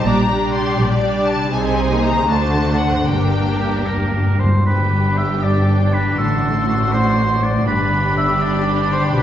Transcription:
0.00 1.47 A#2 soft
0.00 1.49 G3 soft
0.00 1.51 D4 soft
0.00 1.53 G4 soft
0.06 0.68 A#1 medium
0.06 0.68 A#2 medium
0.06 0.30 G3 soft
0.06 0.30 D4 medium
0.06 0.29 G4 soft
0.06 0.29 D5 soft
0.06 0.55 A#5 medium
0.30 1.02 G3 medium
0.30 1.03 D4 soft
0.30 1.01 G4 medium
0.30 1.01 D5 soft
0.54 0.78 C6 medium
0.78 1.42 A#1 medium
0.78 1.42 A#2 medium
0.78 1.28 D5 medium
1.02 1.52 G3 soft
1.02 1.53 D4 medium
1.02 1.52 G4 soft
1.02 1.52 D5 soft
1.27 1.53 A5 medium
1.34 2.21 C3 soft
1.39 2.15 C4 soft
1.43 2.26 D#4 soft
1.48 2.24 C3 medium
1.48 2.28 G#4 soft
1.53 2.25 C2 medium
1.53 1.89 C4 medium
1.53 2.25 D#4 medium
1.53 2.25 G#4 medium
1.53 2.25 C5 medium
1.53 2.04 G#5 medium
1.91 2.29 A#3 medium
2.04 2.29 A#5 medium
2.11 3.01 D3 soft
2.16 3.03 C4 soft
2.20 2.97 D4 soft
2.25 3.06 D2 medium
2.25 3.05 D3 soft
2.25 3.07 A3 soft
2.25 3.07 D4 soft
2.25 3.07 F#4 soft
2.29 3.08 F#4 soft
2.29 3.06 C5 medium
2.29 2.80 A5 medium
2.79 3.06 F#5 medium
2.89 4.58 G2 soft
2.94 4.61 A#3 soft
2.94 5.03 D4 soft
3.03 4.43 G2 soft
3.03 5.17 G4 soft
3.03 3.86 G5 medium
3.07 4.44 G1 soft
3.07 3.14 G2 soft
3.07 4.42 A#3 soft
3.07 4.42 D4 medium
3.07 4.41 G4 soft
3.07 4.44 A#4 soft
3.16 3.23 G2 soft
3.24 3.31 G2 soft
3.32 3.39 G2 soft
3.40 3.47 G2 soft
3.48 3.55 G2 soft
3.57 3.63 G2 soft
3.57 3.88 G4 medium
3.64 3.72 G2 soft
3.73 3.79 G2 soft
3.81 3.87 G2 soft
3.86 3.95 G2 soft
3.86 4.41 A#4 medium
3.97 4.03 G2 medium
4.04 4.10 G2 soft
4.12 4.19 G2 medium
4.20 4.26 G2 medium
4.27 4.35 G2 soft
4.36 4.42 G2 medium
4.36 4.65 C5 medium
4.44 4.51 G2 medium
4.52 4.59 G2 medium
4.65 6.13 G1 medium
4.65 6.13 G2 medium
4.65 6.20 G2 soft
4.65 7.63 D4 medium
4.65 6.13 G4 medium
4.65 5.18 B4 medium
4.65 6.14 G5 medium
4.79 5.92 D3 soft
4.91 6.04 B3 soft
5.04 5.80 D4 soft
5.17 6.20 G4 soft
5.17 5.44 E5 medium
5.30 5.67 B4 soft
5.43 5.95 D5 medium
5.43 6.90 D5 soft
5.55 6.20 G5 soft
5.68 6.20 B4 soft
5.81 6.54 D4 soft
5.93 6.20 D3 soft
5.93 6.17 B4 medium
6.05 6.20 B3 soft
6.17 7.64 A1 medium
6.17 7.64 A2 medium
6.17 7.69 A2 soft
6.17 7.63 F#4 medium
6.17 6.67 A4 medium
6.17 7.62 C6 medium
6.30 7.40 A3 soft
6.42 7.52 C4 soft
6.55 7.28 D4 soft
6.67 7.68 F#4 medium
6.67 6.94 A4 medium
6.79 7.15 C5 soft
6.91 7.44 C5 medium
6.91 8.39 D5 soft
7.04 7.68 F#5 soft
7.16 7.68 C5 soft
7.29 8.02 D4 soft
7.41 7.68 A3 soft
7.41 7.66 D5 medium
7.54 7.68 C4 soft
7.66 9.16 G1 medium
7.66 9.17 G2 soft
7.66 9.15 G2 medium
7.66 9.23 D4 medium
7.66 9.23 G4 medium
7.66 8.15 B4 medium
7.66 9.23 B5 medium
7.79 8.89 D3 soft
7.90 9.02 B3 soft
8.03 8.77 D4 soft
8.14 9.23 G4 soft
8.14 8.43 E5 medium
8.28 8.64 B4 soft
8.40 9.23 D5 medium
8.40 8.91 D5 medium
8.53 9.23 G5 medium
8.65 9.23 B4 soft
8.78 9.23 D4 soft
8.90 9.17 D3 soft
8.90 9.03 C5 medium
9.03 9.23 B3 soft
9.14 9.23 B1 medium
9.14 9.23 B2 medium
9.14 9.23 B4 medium

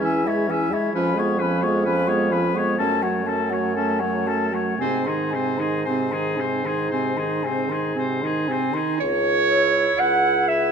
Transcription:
0.00 0.69 E2 medium
0.00 0.27 E3 medium
0.00 0.26 C#4 medium
0.05 0.29 E5 medium
0.05 0.29 G#5 medium
0.24 0.50 G#3 medium
0.24 0.49 E4 medium
0.24 0.53 C#5 medium
0.24 0.52 E5 medium
0.48 0.72 E3 medium
0.48 0.74 C#4 medium
0.48 0.75 E5 medium
0.48 0.74 G#5 medium
0.71 0.92 G#3 medium
0.71 0.94 E4 medium
0.71 0.94 C#5 medium
0.71 0.94 E5 medium
0.93 2.75 F2 medium
0.93 1.16 F3 medium
0.93 1.19 C#4 medium
0.93 1.19 B4 medium
0.93 1.21 B5 medium
1.14 1.41 G#3 medium
1.14 1.41 B3 medium
1.14 1.40 C#5 medium
1.20 1.44 C#6 medium
1.39 1.65 F3 medium
1.39 1.64 C#4 medium
1.39 1.63 B4 medium
1.39 1.66 B5 medium
1.62 1.86 G#3 medium
1.62 1.85 B3 medium
1.62 1.85 C#5 medium
1.62 1.86 C#6 medium
1.85 2.09 F3 medium
1.85 2.09 C#4 medium
1.85 2.10 B4 medium
1.85 2.09 B5 medium
2.07 2.32 G#3 medium
2.07 2.32 B3 medium
2.07 2.34 C#5 medium
2.07 2.33 C#6 medium
2.31 2.56 F3 medium
2.31 2.55 C#4 medium
2.31 2.59 B4 medium
2.31 2.57 B5 medium
2.53 2.78 G#3 medium
2.53 2.78 B3 medium
2.53 2.77 C#6 medium
2.57 2.78 C#5 medium
2.78 4.77 F#2 medium
2.78 3.04 A3 medium
2.78 3.06 C#4 medium
2.78 3.04 A4 medium
2.78 3.04 A5 medium
3.03 3.26 F#3 medium
3.03 3.29 A3 medium
3.03 3.29 C#5 medium
3.03 3.28 F#5 medium
3.25 3.52 A3 medium
3.25 3.52 C#4 medium
3.25 3.55 A4 medium
3.25 3.51 A5 medium
3.50 3.75 F#3 medium
3.50 3.76 A3 medium
3.50 3.75 C#5 medium
3.50 3.75 F#5 medium
3.75 4.02 A3 medium
3.75 4.03 C#4 medium
3.75 4.01 A4 medium
3.75 4.01 A5 medium
4.00 4.29 F#3 medium
4.00 4.29 A3 medium
4.00 4.29 C#5 medium
4.00 4.28 F#5 medium
4.27 4.53 A3 medium
4.27 4.55 C#4 medium
4.27 4.56 A4 medium
4.27 4.55 A5 medium
4.52 4.78 F#3 medium
4.52 4.80 A3 medium
4.52 4.80 C#5 medium
4.52 4.78 F#5 medium
4.78 8.62 G#2 medium
4.78 5.09 C3 medium
4.78 5.09 C4 medium
4.78 5.08 C5 medium
4.78 5.06 G#5 medium
5.05 5.36 D#3 medium
5.05 5.36 D#4 medium
5.05 5.35 G#4 medium
5.05 5.32 C6 medium
5.31 5.60 C3 medium
5.31 5.62 C4 medium
5.31 5.61 C5 medium
5.31 5.59 G#5 medium
5.58 5.86 D#3 medium
5.58 5.87 D#4 medium
5.58 5.85 G#4 medium
5.58 5.84 C6 medium
5.84 6.14 C3 medium
5.84 6.14 C5 medium
5.84 6.13 G#5 medium
5.89 6.16 C4 medium
6.11 6.38 D#3 medium
6.11 6.42 D#4 medium
6.11 6.41 G#4 medium
6.11 6.38 C6 medium
6.36 6.65 C3 medium
6.36 6.67 C5 medium
6.36 6.67 G#5 medium
6.41 6.69 C4 medium
6.64 6.90 D#3 medium
6.64 6.92 D#4 medium
6.64 6.90 G#4 medium
6.64 6.91 C6 medium
6.90 7.17 C3 medium
6.90 7.21 C4 medium
6.90 7.19 C5 medium
6.90 7.19 G#5 medium
7.16 7.45 D#3 medium
7.16 7.47 D#4 medium
7.16 7.46 G#4 medium
7.16 7.45 C6 medium
7.43 7.69 C3 medium
7.43 7.73 C4 medium
7.43 7.73 C5 medium
7.43 7.71 G#5 medium
7.68 7.94 D#3 medium
7.68 7.95 D#4 medium
7.68 7.96 G#4 medium
7.68 7.95 C6 medium
7.95 8.25 C3 medium
7.95 8.25 C4 medium
7.95 8.26 C5 medium
7.95 8.23 G#5 medium
8.22 8.50 D#3 medium
8.22 8.51 D#4 medium
8.22 8.53 G#4 medium
8.22 8.49 C6 medium
8.48 8.75 C3 medium
8.48 8.76 C4 medium
8.48 8.78 C5 medium
8.48 8.75 G#5 medium
8.74 8.99 D#3 medium
8.74 8.99 D#4 medium
8.74 9.00 G#4 medium
8.74 8.99 C6 medium
8.99 9.88 C#2 medium
8.99 9.75 C#5 medium
8.99 10.01 C#5 loud
9.51 10.47 E4 medium
9.98 10.72 C#2 medium
9.98 10.49 F#5 medium
9.98 10.50 F#5 loud
10.48 10.72 E4 medium
10.48 10.72 E5 medium

